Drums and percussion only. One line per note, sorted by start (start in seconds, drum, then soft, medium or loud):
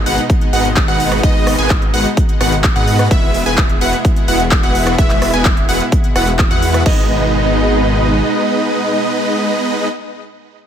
0.06 open hi-hat loud
0.18 closed hi-hat medium
0.30 kick loud
0.30 closed hi-hat medium
0.41 closed hi-hat soft
0.53 open hi-hat loud
0.65 closed hi-hat soft
0.77 kick loud
0.77 clap loud
0.77 closed hi-hat medium
0.88 closed hi-hat soft
1.00 open hi-hat loud
1.12 cross-stick medium
1.12 closed hi-hat medium
1.23 kick loud
1.23 closed hi-hat medium
1.47 cross-stick medium
1.47 open hi-hat loud
1.70 kick loud
1.70 clap loud
1.70 closed hi-hat medium
1.82 closed hi-hat soft
1.94 open hi-hat loud
2.05 closed hi-hat medium
2.17 kick loud
2.17 closed hi-hat medium
2.29 closed hi-hat soft
2.41 cross-stick medium
2.41 open hi-hat loud
2.52 closed hi-hat medium
2.64 kick loud
2.64 clap loud
2.64 closed hi-hat medium
2.76 closed hi-hat soft
2.88 open hi-hat loud
2.99 cross-stick medium
2.99 closed hi-hat medium
3.11 kick loud
3.11 closed hi-hat medium
3.34 open hi-hat loud
3.46 closed hi-hat medium
3.58 kick loud
3.58 clap loud
3.58 closed hi-hat medium
3.69 closed hi-hat soft
3.81 open hi-hat loud
3.93 closed hi-hat medium
4.05 kick loud
4.05 closed hi-hat medium
4.16 closed hi-hat soft
4.28 open hi-hat loud
4.40 closed hi-hat medium
4.51 kick loud
4.51 clap loud
4.51 closed hi-hat medium
4.63 closed hi-hat soft
4.75 open hi-hat loud
4.87 cross-stick medium
4.87 closed hi-hat medium
4.98 kick loud
4.98 closed hi-hat medium
5.10 clap soft
5.10 closed hi-hat soft
5.22 cross-stick medium
5.22 open hi-hat loud
5.34 closed hi-hat medium
5.45 kick loud
5.45 clap loud
5.45 closed hi-hat medium
5.57 closed hi-hat soft
5.69 open hi-hat loud
5.80 closed hi-hat medium
5.92 kick loud
5.92 closed hi-hat medium
6.04 closed hi-hat soft
6.16 cross-stick medium
6.16 open hi-hat loud
6.27 closed hi-hat medium
6.39 kick loud
6.39 clap loud
6.39 closed hi-hat medium
6.51 closed hi-hat soft
6.62 open hi-hat loud
6.74 cross-stick medium
6.74 closed hi-hat medium
6.86 kick loud
6.86 crash medium